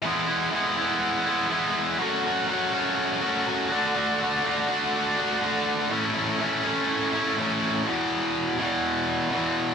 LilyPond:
\new Staff \with { instrumentName = "Distorted electric guitar" } { \time 4/4 \key e \mixolydian \tempo 4 = 123 <e gis b e'>8 <gis b e'>8 <e gis b e'>8 <gis b e'>4 <gis b e'>8 <e gis b e'>4 | <fis a cis' fis'>8 <a cis' fis'>8 <fis a cis' fis'>8 <a cis' fis'>4 <a cis' fis'>8 <fis a cis' fis'>8 <d a d' fis'>8 | <d a d' fis'>8 <a d' fis'>8 <d a d' fis'>8 <a d' fis'>4 <a d' fis'>8 <d a d' fis'>4 | <a, e a cis' e'>8 <a cis' e'>8 <e a cis' e'>8 <a cis' e'>4 <a cis' e'>8 <a, e a cis' e'>4 |
<e, b, e>4. <e, b, e>4. <e, b, e>4 | }